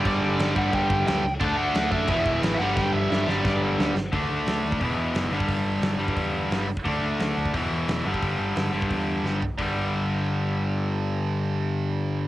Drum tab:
CC |x---x---x---x---|x---x---x---x---|----------------|----------------|
HH |----------------|----------------|----------------|o---o---o---o---|
SD |----o-------o---|----o-------o---|o---o-o-o---o-o-|----o-------o---|
FT |----------------|----------------|----------------|----------------|
BD |o-----o-o-o-----|o-----o-o-o-----|o-------o-------|o------oo------o|

CC |----------------|----------------|----------------|----------------|
HH |o---o---o---o---|o---o---o---o---|o---o---o-------|o---------------|
SD |----o-------o---|----o-------o---|----o-------o---|----------------|
FT |----------------|----------------|--------------o-|----------------|
BD |o------oo------o|o------oo------o|o------oo-------|o---------------|

CC |----------------|
HH |----------------|
SD |----------------|
FT |----------------|
BD |----------------|